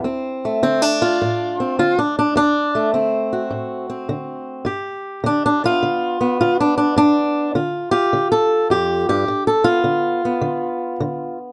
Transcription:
0.04 D2 C4
0.45 A3
0.63 D3 C4
0.82 D4
1.02 F4
1.22 A2
1.60 C4
1.79 D3 F4
1.99 D4
2.19 D4
2.36 D2 D4
2.75 A3
2.94 D3 C4
3.33 F#4
3.51 A2
3.90 C4
4.09 D3
4.65 G2 G4
5.24 D3 D4
5.46 D4
5.64 B3 F4
5.83 D3
6.21 B3
6.41 D3 F4
6.60 D4
6.78 D4
6.96 G2 D4
7.55 D3 F4
7.91 F4 G4
8.13 D3
8.32 A4
8.70 F2 G4
9.09 G2 G4
9.28 G#2
9.47 A4
9.64 B3 F4
9.84 D3
10.25 B3
10.41 D3
11.00 D3

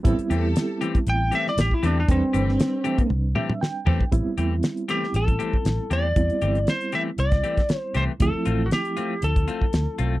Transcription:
0.03 A1 G3 B3 C4 E4 G4 A4, kick, closed hi-hat
0.19 closed hi-hat
0.30 E2 E3 A3 C4 G4 A4, closed hi-hat
0.56 snare, closed hi-hat
0.81 E3 A3 C4 G4, closed hi-hat
0.95 kick, closed hi-hat
1.07 A1 G5, closed hi-hat
1.31 E3 A3 C4 G4 E5, closed hi-hat
1.47 D5, snare
1.57 A1 G4, snare, closed hi-hat
1.71 E4, kick
1.83 E2 E3 A3 C4 D4 G4 A4, closed hi-hat
2.00 D4
2.08 E2 G3 C4 D4 G4 A4 B4, kick, closed hi-hat
2.22 muted fingered electric bass stroke
2.33 G1 E3 A3 C4 G4, closed hi-hat
2.49 snare
2.60 snare, closed hi-hat
2.84 E3 A3 C4 G4, closed hi-hat
2.98 kick, closed hi-hat
3.10 C2, high tom
3.35 E3 A3 C4 G4 E5, mid tom
3.50 mid tom
3.61 G5, snare
3.85 E2 E3 A3 C4 G4 A4, floor tom
4.01 kick
4.11 A1 G3 B3 C4 E4, kick, closed hi-hat
4.26 muted fingered electric bass stroke
4.38 E2 E3 A3 C4 G4, closed hi-hat
4.63 snare, closed hi-hat
4.77 closed hi-hat
4.88 E3 A3 C4 G4, closed hi-hat
5.03 snare
5.14 A1 A4, closed hi-hat
5.28 kick, closed hi-hat
5.39 E3 A3 C4 G4, closed hi-hat
5.53 kick
5.65 A1, snare, closed hi-hat
5.90 E2 E3 A3 C4 G4 D5, closed hi-hat
6.16 E2 G3 B3 C4 E4, kick, closed hi-hat
6.30 muted fingered electric bass stroke, closed hi-hat
6.41 G1 E3 A3 C4 G4, closed hi-hat
6.55 closed hi-hat
6.67 C5, snare, closed hi-hat
6.81 closed hi-hat
6.92 E3 A3 C4 G4 E5, closed hi-hat
7.18 C2 D5, closed hi-hat
7.32 kick, snare, closed hi-hat
7.44 E3 A3 C4 G4, closed hi-hat
7.57 kick, snare, closed hi-hat
7.69 snare, closed hi-hat
7.77 C5
7.94 C2 E3 A3 C4 G4 C5, closed hi-hat
8.19 D2 F3 A3 C4 E4 A4, kick, closed hi-hat
8.35 muted fingered electric bass stroke
8.45 A1 A3 C4 F4, closed hi-hat
8.66 F#4
8.71 G4, snare, closed hi-hat
8.85 closed hi-hat
8.97 A3 C4 F4, closed hi-hat
9.22 D2 A4, closed hi-hat
9.36 kick, closed hi-hat
9.48 A3 C4 F4, closed hi-hat
9.62 kick
9.73 D2, snare, closed hi-hat
9.98 B1 A3 C4 F4, closed hi-hat

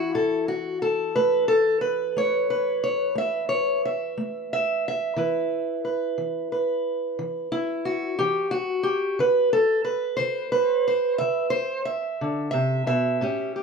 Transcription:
Already playing: E3 C#4 E4 F#4
0.15 A2 A4
0.48 F#4
0.82 A4
1.16 A3 B4
1.48 A4
1.81 B4
2.17 A3 C#5
2.50 B4
2.84 C#5
3.15 A3 E5
3.49 C#5
3.85 E5
4.17 A3
4.53 E5
4.88 E5
5.16 E3 E4 B4
5.85 B4
6.18 E3
6.52 B4
7.19 E3
7.52 E4
7.85 F#4
8.19 E3 G4
8.51 F#4
8.83 G4
9.19 D3 B4
9.53 A4
9.85 B4
10.17 D3 C5
10.52 B4
10.88 C5
11.18 D3 E5
11.50 C5
11.85 E5
12.21 D3
12.51 C3 E5
12.87 B2 E5
13.21 A2 C#4 G4
13.56 G4

